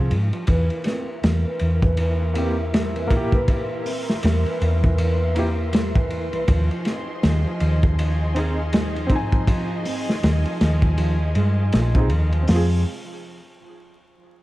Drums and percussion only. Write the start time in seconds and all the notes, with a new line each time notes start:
0.11 ride
0.33 ride
0.47 kick, ride
0.70 ride
0.84 snare, ride
1.23 snare, ride
1.59 ride
1.82 kick
1.97 ride
2.35 ride
2.74 snare, ride
2.96 ride
3.10 kick, ride
3.32 kick
3.48 kick, ride
3.86 open hi-hat
4.10 snare
4.23 snare, ride
4.46 ride
4.61 ride
4.84 kick
4.98 ride
5.36 ride
5.73 snare, ride
5.95 kick
6.10 ride
6.33 ride
6.48 kick, ride
6.71 ride
6.85 snare, ride
7.23 snare, ride
7.60 ride
7.83 kick
7.99 ride
8.36 ride
8.73 snare, ride
8.96 ride
9.10 kick, ride
9.32 kick
9.47 kick, ride
9.85 open hi-hat
10.09 snare
10.23 snare, ride
10.45 ride
10.61 snare, ride
10.82 kick
10.98 ride
11.35 ride
11.72 snare, ride
11.95 kick
12.09 ride
12.32 ride
12.47 snare, open hi-hat